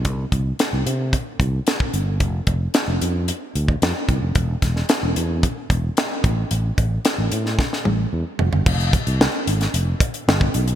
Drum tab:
CC |----------------|----------------|----------------|----------------|
HH |x-x-x-x-x-x-x-x-|x-x-x-x-x-x-x-x-|x-x-x-x-x-x-x-x-|x-x-x-x---------|
SD |----o-------o---|----o-------o---|--ooo-------o---|----o--ooo------|
T1 |----------------|----------------|----------------|----------o-----|
FT |----------------|----------------|----------------|--------------oo|
BD |o-o-----o-o--o--|o-o--------o--o-|o-o-----o-o---o-|--o-----o-------|

CC |x---------------|
HH |-xxx--xxx-xx--xx|
SD |----o--o----o---|
T1 |----------------|
FT |----------------|
BD |o-o-------o--o--|